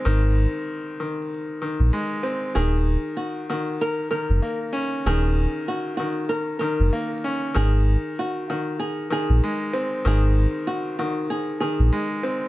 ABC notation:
X:1
M:4/4
L:1/16
Q:"Swing 16ths" 1/4=96
K:Abmix
V:1 name="Nylon-string guitar"
z16 | A4 G2 G2 B2 B3 z3 | A4 G2 G2 B2 B3 z3 | A4 G2 G2 A2 A3 z3 |
A4 G2 G2 A2 A3 z3 |]
V:2 name="Upright piano" clef=bass
[E,A,C]6 E,4 E,2 A,2 C2 | E,6 E,4 E,2 B,2 D2 | E,6 E,4 E,2 B,2 D2 | E,6 E,4 E,2 A,2 C2 |
E,6 E,4 E,2 A,2 C2 |]
V:3 name="Sub bass" clef=bass
A,,,3 z8 B,,, z4 | E,,,3 z8 G,,, z4 | E,,,3 z8 G,,, z4 | A,,,3 z8 B,,, z4 |
A,,,3 z8 B,,, z4 |]